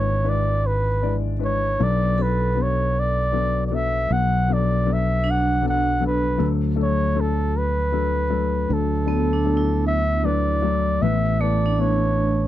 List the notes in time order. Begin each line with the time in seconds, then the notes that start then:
Already playing: G#1 G#2 G#3 D4 E4 B4 C#5
0.24 G#3 D4 E4 B4
0.29 D5
0.67 B4
1.02 G#3 D4 E4 D5
1.39 G#3 D4 E4 B4
1.45 C#5
1.79 B1 B2 F#3 B3 D4 A4 D5
2.18 F#3 B3 D4 A4
2.22 B4
2.55 F#3 B3 D4 B4
2.62 C#5
3.00 D5
3.32 F#3 B3 D4 A4
3.67 F#3 D5
3.71 B3 D4 A4 E5
4.10 B1 B2 F#5
4.48 F#3 B3 D4 A4
4.53 D5
4.85 F#3 B3 D4 A4
4.93 E5
5.24 D4
5.31 F#5
5.62 F#3 B3 D4 A4
5.69 F#5
6.00 F#3 B3 D4 A4
6.07 B4
6.38 D2 D3 F#3 A3 D4 A4
6.76 F#3 A3 D4 A4
6.83 C#5
7.14 F#3 A3 D4 A4
7.21 A4
7.57 B4
7.92 F#3 A3 D4 A4
8.30 F#3 A3 D4 A4
8.69 D2 D3
8.74 A4
9.06 F#3 A3 B3 D4 A4
9.33 D4
9.44 F#3 A3 D4 A4
9.57 E4
9.87 E5
10.23 F#3 A3 D4 B4 D5
10.62 F#3 A3 D4 A4
11.02 A1 A2 A3 B3 E4 B4 E5
11.41 A3 B3 E4 B4 D5
11.66 D4
11.79 A3 B3 E4 B4 C#5